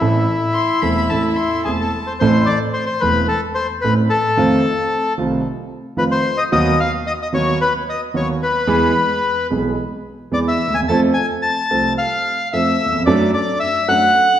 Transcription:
Already playing: bandoneon E4
0.01 grand piano A1 A2 E3 A3 C4 A4
0.53 violin C6
0.82 grand piano E1 E2 E3 A3 C4 A4, violin B5
1.10 grand piano A1 A2 E3 A3 C4 A4, violin A5
1.22 violin B5
1.36 violin C6
1.65 grand piano E1 E2 E3 A3 C4 A4, bandoneon G#4, violin A5
1.81 bandoneon A4
2.07 bandoneon C5
2.20 grand piano A1 A2 E3 A3 C4 A4, bandoneon C5
2.46 bandoneon D5
2.73 bandoneon C5
2.86 bandoneon C5
3.00 grand piano E1 E2 E3 A3 C4 A4, bandoneon B4
3.28 bandoneon A4
3.55 bandoneon C5
3.81 grand piano A1 A2 E3 A3 C4 A4, bandoneon B4
4.10 bandoneon A4
4.37 grand piano F2 D#3 F3 A3 C4 F4
5.18 grand piano C2 C3 D#3 A3 C4 F4
5.97 grand piano F2 D#3 F3 A3 C4 F4, bandoneon B4
6.11 bandoneon C5
6.37 bandoneon D#5
6.52 grand piano D#2 D#3 F#3 B3 F#4, bandoneon D#5
6.80 bandoneon F5
7.07 bandoneon D#5
7.22 bandoneon D#5
7.33 grand piano D#2 D#3 F#3 B3 F#4, bandoneon C#5
7.61 bandoneon B4
7.89 bandoneon D#5
8.14 grand piano D#2 D#3 F#3 B3 F#4, bandoneon C#5
8.43 bandoneon B4
8.67 grand piano E2 E3 G#3 B3 G#4
9.50 grand piano B1 B2 E3 G#3 B3 G#4
10.31 grand piano E2 E3 G#3 B3 G#4, bandoneon D5
10.48 bandoneon E5
10.67 grand piano D2
10.74 grand piano D#2, bandoneon G#5
10.82 grand piano E2
10.88 grand piano F2 F3 A3 C4 A4, bandoneon A5
11.14 bandoneon G#5
11.42 bandoneon A5
11.71 grand piano C2 C3 F3 A3 C4 A4
11.98 bandoneon F5
12.53 grand piano F2 F3 A3 C4 A4, bandoneon E5
12.86 grand piano D#2
12.92 grand piano E2
12.99 grand piano F2
13.06 grand piano F#2 F#3 A3 D4 A4, bandoneon D5
13.34 bandoneon D5
13.60 bandoneon E5
13.88 grand piano F#2 F#3 A3 D4 A4, bandoneon F#5

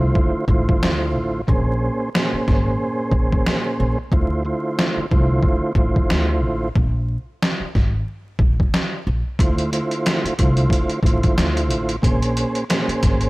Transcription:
Already playing: tonewheel organ D3 A3 E4 F4 C5
0.15 kick
0.48 upright bass A1, tonewheel organ D3 A3 E4 F4 C5, kick
0.69 kick
0.83 upright bass D2, snare
1.16 upright bass A1
1.47 upright bass A#1, tonewheel organ A#2 A#3 C#4 G#4 C5, kick
2.15 tonewheel organ A#2 A#3 C#4 G#4 C5, snare
2.33 muted upright bass stroke
2.48 upright bass G#1, kick, snare
3.11 upright bass A#1, kick
3.32 kick
3.46 snare
3.80 upright bass A#1
4.12 upright bass D2, tonewheel organ D3 A3 E4 F4 C5, kick
4.45 tonewheel organ D3 A3 E4 F4 C5
4.79 snare
4.96 muted upright bass stroke
5.11 upright bass C2, tonewheel organ D3 A3 E4 F4 C5, kick
5.43 kick
5.75 upright bass A1, tonewheel organ D3 A3 E4 F4 C5, kick
5.96 kick
6.10 upright bass D2, snare
6.43 upright bass A1
6.75 upright bass A#1, kick
7.43 snare
7.60 muted upright bass stroke
7.75 upright bass G#1, kick, snare
8.39 upright bass A#1, kick
8.60 kick
8.74 snare
9.07 upright bass A#1
9.39 upright bass D2, tonewheel organ D3 A3 E4 F4 C5, kick, closed hi-hat
9.58 closed hi-hat
9.72 tonewheel organ D3 A3 E4 F4 C5, closed hi-hat
9.91 closed hi-hat
10.06 snare, closed hi-hat
10.24 muted upright bass stroke, closed hi-hat
10.38 upright bass C2, tonewheel organ D3 A3 E4 F4 C5, kick, closed hi-hat
10.57 closed hi-hat
10.70 kick, closed hi-hat
10.90 closed hi-hat
11.03 upright bass A1, tonewheel organ D3 A3 E4 F4 C5, kick, closed hi-hat
11.23 kick, closed hi-hat
11.38 upright bass D2, snare, closed hi-hat
11.57 closed hi-hat
11.70 upright bass A1, closed hi-hat
11.89 closed hi-hat
12.02 upright bass A#1, tonewheel organ A#2 A#3 C#4 G#4 C5, kick, closed hi-hat
12.22 closed hi-hat
12.37 closed hi-hat
12.55 closed hi-hat
12.69 tonewheel organ A#2 A#3 C#4 G#4 C5, snare, closed hi-hat
12.88 muted upright bass stroke, closed hi-hat
13.03 upright bass G#1, kick, snare, closed hi-hat
13.21 closed hi-hat

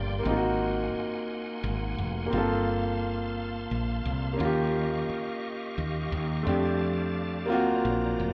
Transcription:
Already playing: fretless electric bass G1, grand piano A#3 C4 D4 G4, tonewheel organ A#3 D5 G5 C6
0.19 grand piano A#3 C4, tonewheel organ F#5 G#5
0.25 fretless electric bass G#1, grand piano D#4
0.31 grand piano F4
0.37 grand piano F#4
0.95 muted fretless electric bass stroke
1.64 fretless electric bass G#1
1.98 fretless electric bass F1
2.26 grand piano A#3 C4
2.31 fretless electric bass G1, grand piano F4, tonewheel organ F5 A5
2.38 grand piano A4
3.71 fretless electric bass A#1
4.05 fretless electric bass C2
4.33 grand piano A#3 C#4
4.38 fretless electric bass D#2, grand piano F4, tonewheel organ G4 D#5 C#6
4.45 grand piano G4
5.09 muted fretless electric bass stroke
5.78 fretless electric bass D#2
6.12 fretless electric bass D#2
6.43 fretless electric bass F2, grand piano A3 C4 D4, tonewheel organ G4 D5 A5
6.48 grand piano G4
7.46 tonewheel organ F#3 C5 A#5, grand piano A#3 C4 F4
7.51 fretless electric bass D2, grand piano F#4
7.85 fretless electric bass A#1
8.20 fretless electric bass F1

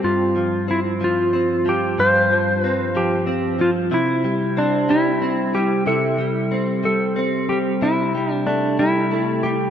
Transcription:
Already playing: clean electric guitar G3 C4 E4
0.04 clean electric guitar G2, electric slide guitar F4
0.36 clean electric guitar F3
0.68 clean electric guitar C4, electric slide guitar E4
1.01 clean electric guitar F3, electric slide guitar F4
1.33 clean electric guitar C4
1.66 clean electric guitar F3, electric slide guitar G4
1.98 clean electric guitar G2 F4, electric slide guitar C5
2.31 clean electric guitar F3
2.62 clean electric guitar C4, electric slide guitar B4
2.95 clean electric guitar F3, electric slide guitar G4
3.27 clean electric guitar C4
3.59 clean electric guitar F3, electric slide guitar F4
3.91 clean electric guitar C3 E4, electric slide guitar E4
4.24 clean electric guitar G3
4.57 clean electric guitar C4, electric slide guitar D4
4.89 clean electric guitar G3, electric slide guitar E4
5.22 clean electric guitar C4
5.54 clean electric guitar G3, electric slide guitar G4
5.86 clean electric guitar C3 E4, electric slide guitar A4
6.19 clean electric guitar G3
6.52 clean electric guitar C4
6.84 clean electric guitar G3, electric slide guitar A4
7.16 clean electric guitar C4
7.49 clean electric guitar G3, electric slide guitar G4
7.82 clean electric guitar C3 E4, electric slide guitar E4
8.15 clean electric guitar G3
8.33 electric slide guitar D4
8.47 clean electric guitar A3, electric slide guitar D4
8.79 clean electric guitar G3, electric slide guitar E4
9.11 clean electric guitar A3
9.43 clean electric guitar G3, electric slide guitar G4

